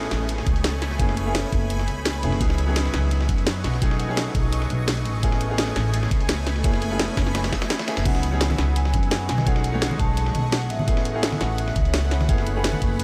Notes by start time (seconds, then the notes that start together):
Already playing: A1 A3 B3 C#4 E4 G#4 C#5 G#5 B5
0.03 snare
0.11 A1, snare, closed hi-hat
0.29 closed hi-hat
0.38 snare
0.47 C#2, kick, closed hi-hat
0.56 closed hi-hat
0.64 snare, closed hi-hat
0.82 snare, closed hi-hat
0.91 snare
0.99 F#1 A3 B3 C#4 E4 G#4 E5, kick, closed hi-hat
1.09 snare
1.17 closed hi-hat
1.25 A3 B3 C#4 E4 G#4
1.35 snare, closed hi-hat
1.52 F#1, kick, closed hi-hat
1.70 closed hi-hat
1.79 snare
1.88 C#2, closed hi-hat
2.05 snare, closed hi-hat
2.23 F#1 A3 B3 C#4 E4 G#4, closed hi-hat
2.32 snare
2.40 C#2 F#3 B3 C#4 D#4 G#4 B4 D#5 F#5 C#6, kick, closed hi-hat
2.50 snare
2.58 closed hi-hat
2.67 F#3 B3 C#4 D#4 G#4
2.76 snare, closed hi-hat
2.85 snare
2.94 C#2, snare, closed hi-hat
3.11 closed hi-hat
3.21 snare
3.29 F#2, kick, closed hi-hat
3.38 closed hi-hat
3.47 snare, closed hi-hat
3.64 B1, snare, closed hi-hat
3.74 snare
3.81 F#3 A3 C#4 D#4 G#4 G#5, kick, closed hi-hat
3.91 snare
4.00 closed hi-hat
4.08 F#3 A3 C#4 D#4 G#4
4.17 snare, closed hi-hat
4.35 B1, kick, closed hi-hat
4.52 closed hi-hat
4.62 snare
4.70 B1, closed hi-hat
4.88 snare, closed hi-hat, open hi-hat
4.97 closed hi-hat
5.05 A1, closed hi-hat
5.23 A3 B3 C#4 E4 G#4 C#5 B5, kick, closed hi-hat
5.32 snare
5.41 closed hi-hat
5.49 A3 B3 C#4 E4 G#4
5.58 snare, closed hi-hat
5.68 snare
5.76 A1, snare, closed hi-hat
5.93 closed hi-hat
6.03 snare
6.11 C#2, kick, closed hi-hat
6.21 closed hi-hat
6.29 snare, closed hi-hat
6.47 snare, closed hi-hat
6.56 snare
6.64 F#1 A3 B3 C#4 E4 G#4 E5, kick, closed hi-hat
6.74 snare
6.82 closed hi-hat
6.90 A3 B3 C#4 E4 G#4
7.00 snare, closed hi-hat
7.17 F#1, kick, snare, closed hi-hat
7.27 snare
7.35 snare, closed hi-hat
7.44 snare, closed hi-hat
7.52 kick, snare, closed hi-hat
7.62 snare, closed hi-hat
7.70 snare, closed hi-hat
7.79 snare, closed hi-hat
7.87 A3 B3 C#4 E4 G#4, snare, closed hi-hat
7.97 F#1, snare, closed hi-hat
8.05 C#2 F#3 B3 C#4 D#4 G#4 B4 D#5 F#5 C#6, kick, closed hi-hat, crash
8.15 snare
8.23 closed hi-hat
8.31 F#3 B3 C#4 D#4 G#4
8.41 snare, closed hi-hat
8.50 snare, high conga
8.58 C#2, snare, closed hi-hat
8.76 G#5, closed hi-hat
8.85 snare
8.93 F#2, kick, closed hi-hat, high conga
9.03 closed hi-hat
9.11 snare, closed hi-hat
9.29 B1 G#5, snare, closed hi-hat
9.38 snare, high conga
9.46 F#3 A3 B3 C#4 D#4 G#4 F#5, kick, closed hi-hat
9.56 snare
9.64 closed hi-hat
9.72 F#3 G#3 A3 C#4 D#4
9.82 snare, closed hi-hat
9.91 high conga
9.99 B1 A5, kick, closed hi-hat
10.17 closed hi-hat
10.26 snare
10.35 B1, closed hi-hat, high conga
10.52 F#5, snare, closed hi-hat, open hi-hat
10.62 closed hi-hat
10.70 A1 E5, closed hi-hat
10.79 high conga
10.87 A3 B3 C#4 E4 G#4 C#5 B5, kick, closed hi-hat
10.97 snare
11.05 closed hi-hat
11.13 A3 B3 C#4 E4 G#4
11.23 snare, closed hi-hat
11.32 snare, high conga
11.41 A1 F#5, snare, closed hi-hat
11.58 E5, closed hi-hat
11.68 snare
11.76 C#2, kick, closed hi-hat, high conga
11.85 closed hi-hat
11.94 snare, closed hi-hat
12.11 snare, closed hi-hat
12.21 snare, high conga
12.28 F#1 A3 B3 C#4 E4 G#4 E5, kick, closed hi-hat
12.38 snare
12.47 closed hi-hat
12.54 A3 B3 C#4 E4 G#4
12.64 snare, closed hi-hat
12.73 high conga
12.82 F#1, kick, closed hi-hat
12.99 closed hi-hat